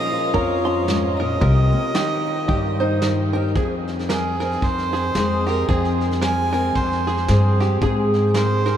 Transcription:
Already playing: A#2 F3 A#3 C#4 F4 A#4 D#5
0.13 F4
0.34 F2 A#4 C#5, kick
0.65 C#4 C6
0.87 G#2, snare
1.17 A#2 A#4 D#5
1.41 C2 C3 G4 A#4, kick
1.73 A#3
1.94 D#3 D#4 G4, snare
2.27 G4
2.48 G2 G4, kick
2.80 D#4 C5
3.02 D#3, snare
3.33 G4 A#4
3.55 F2 G#4, kick, snare
3.88 snare
3.99 snare
4.09 G#4 A#4, snare
4.40 C4 A#4, snare
4.52 snare
4.62 F2 C5, kick, snare
4.78 snare
4.93 G#4, snare
5.15 F2 G#3 C4 G#4, snare
5.46 G4 A#4, snare
5.68 F2 C4 G#4, kick, snare
5.85 snare
6.01 snare
6.11 snare
6.21 A#4 G#5, snare
6.53 C4 A#4, snare
6.75 F2 C5, kick, snare
6.92 snare
7.07 G#4, snare
7.17 snare
7.28 G2 C4 G#4, snare
7.60 G4, snare
7.81 G#2 G#4, kick, snare
8.14 snare
8.34 A#4 C5, snare
8.66 D#4 A#4, snare

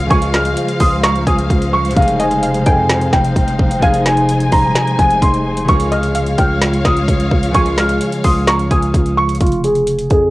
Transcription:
Already playing: G#3 D#4 F4 G#4 F5
0.06 C#3 F3 G#3 G#5
0.10 C#2 F4 G#4 C5 C#6, kick, closed hi-hat
0.22 closed hi-hat
0.34 F6, snare, closed hi-hat
0.45 closed hi-hat
0.57 closed hi-hat
0.68 closed hi-hat
0.80 C#2 C6 D#6, kick, open hi-hat
1.03 A#5 C#6, snare, closed hi-hat
1.15 closed hi-hat
1.27 C#2 G#5 D#6, kick, closed hi-hat
1.39 closed hi-hat
1.50 C#2, kick, closed hi-hat
1.62 closed hi-hat
1.73 C#6
1.85 closed hi-hat
1.91 C3 F3, closed hi-hat
1.96 F1 G#3 D#4 G#4 F5, kick, closed hi-hat
2.02 closed hi-hat
2.08 closed hi-hat
2.20 D#5 G#5, closed hi-hat
2.31 closed hi-hat
2.43 F5, closed hi-hat
2.54 closed hi-hat
2.66 F2 G5 G#5, kick, closed hi-hat
2.89 snare, closed hi-hat
3.01 closed hi-hat
3.13 F1 G5, kick, snare, closed hi-hat
3.25 closed hi-hat
3.36 F1, kick, closed hi-hat
3.48 closed hi-hat
3.59 F1, kick
3.71 closed hi-hat
3.79 F1 C3 F3 G#3 F5 G#5, kick, closed hi-hat
3.85 D#4 G#4
3.94 closed hi-hat
4.06 G#5, snare, closed hi-hat
4.17 closed hi-hat
4.29 closed hi-hat
4.40 closed hi-hat
4.52 D#1 A#5 C6, kick, open hi-hat
4.75 A#5, snare, closed hi-hat
4.87 closed hi-hat
4.97 F1 C3 F3 G#3 D#4 G#4 G#5, kick, closed hi-hat
5.11 closed hi-hat
5.22 F1 C6, kick, closed hi-hat
5.34 closed hi-hat
5.57 closed hi-hat
5.65 C#3 F3 G#3 C#5 F5, closed hi-hat
5.69 C#2 G#3 F4 G#4 C#6, kick
5.80 closed hi-hat
5.92 D#5 F6, closed hi-hat
6.03 closed hi-hat
6.15 F5, closed hi-hat
6.26 closed hi-hat
6.38 C#2 G5 F6, kick, closed hi-hat
6.62 snare, closed hi-hat
6.73 closed hi-hat
6.85 C#2 D#6, kick, snare, closed hi-hat
6.97 closed hi-hat
7.08 C#2, kick, closed hi-hat
7.20 closed hi-hat
7.31 C#2, kick
7.43 closed hi-hat
7.50 C#3 F3 G#3
7.54 C#2 F4 G#4 G#5 C#6, kick, closed hi-hat
7.66 closed hi-hat
7.78 F6, snare, closed hi-hat
7.89 closed hi-hat
8.01 closed hi-hat
8.12 closed hi-hat
8.24 C#2 C6 D#6, kick, open hi-hat
8.47 A#5 C#6, snare, closed hi-hat
8.59 closed hi-hat
8.71 C#2 G#5 D#6, kick, closed hi-hat
8.83 closed hi-hat
8.94 C#2, kick, closed hi-hat
9.06 closed hi-hat
9.17 C#6
9.29 closed hi-hat
9.35 closed hi-hat
9.41 F1 F4, kick, closed hi-hat
9.46 closed hi-hat
9.52 closed hi-hat
9.64 G#4, closed hi-hat
9.75 closed hi-hat
9.87 closed hi-hat
9.99 closed hi-hat
10.10 F2 G#4, kick, closed hi-hat

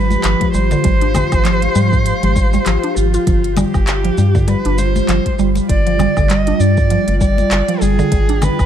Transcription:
Already playing: G#1 F3 G3 F4 G4 B4
0.11 high conga, shaker
0.19 F5
0.24 G#1, clap, closed hi-hat, shaker
0.41 F3, kick, closed hi-hat, high conga
0.53 G#1 G3 C5, shaker
0.71 D3, muted conga, shaker
0.84 G#1 G3, kick, closed hi-hat, shaker
1.01 D4, closed hi-hat
1.14 muted conga, low conga, low woodblock, shaker
1.32 G#1, kick, closed hi-hat, low woodblock, shaker
1.45 F3, clap, closed hi-hat, shaker
1.62 closed hi-hat, high conga
1.75 G#2 G3, shaker
1.93 kick, shaker
2.06 closed hi-hat, shaker
2.23 G#1 F3, closed hi-hat, high conga
2.36 G3, kick, shaker
2.53 G3, muted conga, high conga, shaker
2.66 G#1 F3, clap, closed hi-hat, shaker
2.84 D4, closed hi-hat
2.96 G#1 F4, high conga, shaker
3.14 F4, closed hi-hat, shaker
3.27 G1 F3 G3, kick, closed hi-hat, shaker
3.44 closed hi-hat
3.57 G3 G4, muted conga, low conga, low woodblock, shaker
3.74 G1, kick, low woodblock, shaker
3.87 clap, closed hi-hat, shaker
4.05 F3, closed hi-hat
4.18 G2 G3, shaker
4.35 D3, kick, muted conga, shaker
4.48 G3 B4, closed hi-hat, shaker
4.62 G1 D4 G5, closed hi-hat
4.78 C5, muted conga, shaker
4.96 high conga, shaker
5.08 G1 F3, clap, closed hi-hat, shaker
5.26 kick, closed hi-hat, high conga
5.39 G1 G3, shaker
5.55 muted conga, shaker
5.69 G1 D5, kick, closed hi-hat, shaker
5.87 F3, closed hi-hat
5.99 G3, muted conga, low conga, low woodblock, shaker
6.17 G1 D3, kick, low woodblock, shaker
6.30 G3 D#5, clap, closed hi-hat, shaker
6.47 D4, closed hi-hat, high conga
6.60 G2 D5, shaker
6.77 kick, shaker
6.90 F3, closed hi-hat, shaker
7.08 G1, closed hi-hat, high conga
7.20 G3 D5, kick, shaker
7.38 muted conga, high conga, shaker
7.51 G1, clap, closed hi-hat, shaker
7.68 F3, closed hi-hat
7.81 G1 G3 G#4, high conga, shaker
7.99 D3, shaker
8.12 G#1 F3 G3, kick, closed hi-hat, shaker
8.29 D4, closed hi-hat
8.42 B4, muted conga, low conga, low woodblock, shaker
8.59 G#1, kick, low woodblock, shaker

